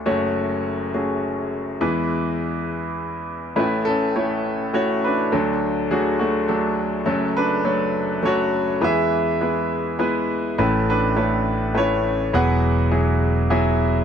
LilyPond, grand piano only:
<<
  \new Staff \with { instrumentName = "Grand piano" } { \time 3/4 \key a \major \tempo 4 = 103 << { r2. | r2. | e'8 <cis' a'>4 r8 cis''8 <d' b'>8 | d'4 gis'8 <a fis'>8 r4 |
cis'8 <d' b'>4. <fis' cis''>4 | <gis' e''>2 r4 | a'8 <d' b'>4. <e' cis''>4 | <b' fis''>2 e''4 | } \\ { <a cis' fis' cis''>4. <a cis' fis' gis'>4. | <gis b e' b'>2. | <a cis' e' b'>8 r8 <a cis' e' cis''>8 r8 <a cis' e' fis'>8 r8 | <fis a d' a'>8 r8 <fis a d' fis'>8 r8 <fis a d' a'>8 r8 |
<fis a cis' a'>8 r8 <fis a a' cis''>8 r8 <fis a cis' a'>8 r8 | <gis b e' b'>8 r8 <gis b e' b'>8 r8 <gis b e' b'>8 r8 | <a cis' e' b'>8 r8 <a e' b' cis''>8 r8 <a cis' e' b'>8 r8 | <fis b e' gis'>8 r8 <fis b e' gis'>8 r8 <fis b e' gis'>8 r8 | } >> }
  \new Staff \with { instrumentName = "Grand piano" } { \clef bass \time 3/4 \key a \major <fis,, fis,>2. | <e, e>2. | <a,, a,>2. | <d, d>2. |
<fis,, fis,>2. | <e, e>2. | <a,, a,>2. | e,2. | }
>>